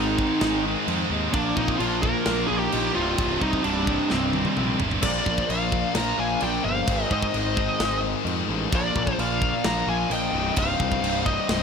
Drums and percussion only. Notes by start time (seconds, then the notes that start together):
0.19 kick
0.41 snare, crash
0.88 crash
1.33 kick, crash
1.57 kick
1.68 kick
1.80 crash
2.03 kick
2.26 snare, crash
2.72 crash
3.18 kick, crash
3.42 kick
3.53 kick
3.64 crash
3.87 kick
4.10 snare
4.33 high tom
4.45 high tom
4.57 mid tom
4.80 floor tom
4.91 floor tom
5.02 kick, crash
5.26 kick
5.38 kick
5.50 crash
5.72 kick
5.95 snare, crash
6.41 crash
6.87 kick, crash
7.11 kick
7.22 kick
7.34 crash
7.57 kick
7.80 snare, crash
8.27 crash
8.72 kick, crash
8.96 kick
9.07 kick
9.19 crash
9.42 kick
9.64 snare, crash
10.11 crash
10.56 kick, crash
10.80 kick
10.92 kick
11.04 crash
11.26 kick
11.49 snare, crash